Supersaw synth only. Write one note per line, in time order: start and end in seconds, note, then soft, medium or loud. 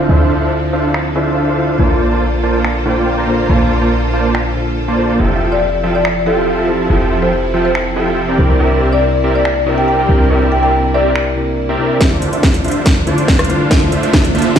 0.09 0.39 D4 medium
0.09 0.39 A4 medium
0.09 0.39 C5 medium
0.09 0.39 E5 medium
0.09 0.39 F5 medium
0.42 0.52 D4 medium
0.42 0.52 A4 medium
0.42 0.52 C5 medium
0.42 0.52 E5 medium
0.42 0.52 F5 medium
0.73 0.90 D4 medium
0.73 0.90 A4 medium
0.73 0.90 C5 medium
0.73 0.90 E5 medium
0.73 0.90 F5 loud
1.16 1.45 D4 medium
1.16 1.45 A4 medium
1.16 1.45 C5 medium
1.16 1.45 E5 medium
1.16 1.45 F5 medium
1.48 1.77 D4 medium
1.48 1.77 A4 medium
1.48 1.77 C5 medium
1.48 1.77 E5 medium
1.48 1.77 F5 medium
1.79 2.09 A#3 medium
1.79 2.09 F4 medium
1.79 2.09 C5 medium
1.79 2.09 D5 medium
1.79 2.09 A5 medium
2.12 2.22 A#3 medium
2.12 2.22 F4 medium
2.12 2.22 C5 medium
2.12 2.22 D5 medium
2.12 2.22 A5 medium
2.43 2.60 A#3 medium
2.43 2.60 F4 medium
2.43 2.60 C5 medium
2.43 2.60 D5 medium
2.43 2.60 A5 loud
2.86 3.15 A#3 medium
2.86 3.15 F4 medium
2.86 3.15 C5 medium
2.86 3.15 D5 medium
2.86 3.15 G5 medium
3.18 3.47 A#3 medium
3.18 3.47 F4 medium
3.18 3.47 C5 medium
3.18 3.47 D5 medium
3.18 3.47 A#5 medium
3.49 3.79 A#3 medium
3.49 3.79 F4 medium
3.49 3.79 C5 medium
3.49 3.79 D5 medium
3.49 3.79 A5 medium
3.82 3.92 A#3 medium
3.82 3.92 F4 medium
3.82 3.92 C5 medium
3.82 3.92 D5 medium
3.82 3.92 A5 medium
4.13 4.30 A#3 medium
4.13 4.30 F4 medium
4.13 4.30 C5 medium
4.13 4.30 D5 medium
4.13 4.30 A5 loud
4.88 5.17 A#3 medium
4.88 5.17 F4 medium
4.88 5.17 C5 medium
4.88 5.17 D5 medium
4.88 5.17 A5 loud
5.20 5.49 F3 medium
5.20 5.49 F4 medium
5.20 5.49 A4 medium
5.20 5.49 E5 medium
5.20 5.49 G5 medium
5.52 5.62 F3 medium
5.52 5.62 F4 medium
5.52 5.62 A4 medium
5.52 5.62 E5 medium
5.52 5.62 G5 medium
5.83 6.01 F3 medium
5.83 6.00 F4 medium
5.83 6.00 A4 medium
5.83 6.00 E5 medium
5.83 6.00 G5 loud
6.26 6.56 F3 medium
6.26 6.56 F4 medium
6.26 6.56 A4 medium
6.26 6.56 E5 medium
6.26 6.56 G5 medium
6.58 6.88 F3 medium
6.58 6.88 F4 medium
6.58 6.88 A4 medium
6.58 6.88 E5 medium
6.58 6.88 A5 medium
6.90 7.20 F3 medium
6.90 7.20 F4 medium
6.90 7.20 A4 medium
6.90 7.20 E5 medium
6.90 7.20 G5 medium
7.22 7.32 F3 medium
7.22 7.32 F4 medium
7.22 7.32 A4 medium
7.22 7.32 E5 medium
7.22 7.32 G5 medium
7.54 7.71 F3 loud
7.54 7.71 F4 medium
7.54 7.71 A4 medium
7.54 7.71 E5 medium
7.54 7.71 G5 loud
7.96 8.26 F3 medium
7.96 8.26 F4 medium
7.96 8.26 A4 medium
7.96 8.26 E5 medium
7.96 8.26 G5 medium
8.29 8.58 C4 medium
8.29 8.58 G4 medium
8.29 8.58 A#4 medium
8.29 8.58 D5 medium
8.29 8.58 G5 medium
8.60 8.90 C4 medium
8.60 8.90 G4 medium
8.60 8.90 A#4 medium
8.60 8.90 D5 medium
8.60 8.90 E5 medium
8.92 9.03 C4 medium
8.92 9.03 G4 medium
8.92 9.03 A#4 medium
8.92 9.03 D5 medium
8.92 9.03 E5 medium
9.24 9.41 C4 loud
9.24 9.41 G4 medium
9.24 9.41 A#4 medium
9.24 9.41 D5 medium
9.24 9.41 E5 loud
9.66 9.96 C4 medium
9.66 9.96 G4 medium
9.66 9.96 A#4 medium
9.66 9.96 D5 medium
9.66 9.96 E5 medium
9.99 10.28 C4 medium
9.99 10.28 G4 medium
9.99 10.28 A#4 medium
9.99 10.28 D5 medium
9.99 10.28 G5 medium
10.30 10.60 C4 medium
10.30 10.60 G4 medium
10.30 10.60 A#4 medium
10.30 10.60 D5 medium
10.30 10.60 E5 medium
10.62 10.73 C4 medium
10.62 10.73 G4 medium
10.62 10.73 A#4 medium
10.62 10.73 D5 medium
10.62 10.73 E5 medium
10.94 11.11 C4 medium
10.94 11.11 G4 medium
10.94 11.11 A#4 medium
10.94 11.11 D5 medium
10.94 11.11 E5 loud
11.69 11.98 C4 medium
11.69 11.98 G4 medium
11.69 11.98 A#4 medium
11.69 11.98 D5 medium
11.69 11.98 E5 loud
12.01 12.30 D3 medium
12.01 12.30 D4 medium
12.01 12.30 F4 medium
12.01 12.30 C5 medium
12.01 12.30 E5 medium
12.33 12.43 D3 medium
12.33 12.43 D4 medium
12.33 12.43 F4 medium
12.33 12.43 C5 medium
12.33 12.43 E5 medium
12.65 12.81 D3 loud
12.65 12.81 D4 medium
12.65 12.81 F4 medium
12.65 12.81 C5 medium
12.65 12.81 E5 loud
13.07 13.37 D3 medium
13.07 13.37 D4 medium
13.07 13.37 F4 medium
13.07 13.37 C5 medium
13.07 13.37 D5 loud
13.39 13.68 D3 medium
13.39 13.68 D4 medium
13.39 13.68 F4 medium
13.39 13.68 C5 medium
13.39 13.68 F5 medium
13.71 14.01 D3 medium
13.71 14.01 D4 medium
13.71 14.01 F4 medium
13.71 14.01 C5 medium
13.71 14.01 E5 medium
14.03 14.13 D3 medium
14.03 14.13 D4 medium
14.03 14.13 F4 medium
14.03 14.13 C5 medium
14.03 14.13 E5 medium
14.35 14.52 D3 loud
14.35 14.52 D4 medium
14.35 14.52 F4 medium
14.35 14.52 C5 medium
14.35 14.52 E5 loud